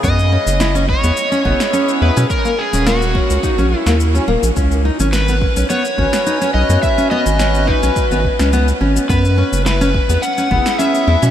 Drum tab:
SH |xx-xxx-xxx-xxx-x|xx-xxx-xxx-xxx-x|xx-xxx-xxx-xxx-x|xx-xxx-xxx-xxx-x|
SD |----o------o----|----o------o----|----o------o----|----o------o----|
BD |o-----o---o-----|o-----o-o-------|o-----o---o-----|o-----o-o-o-----|

SH |xx-xxx-xxx-xxx-x|
SD |----o------o----|
BD |o-----o---o-----|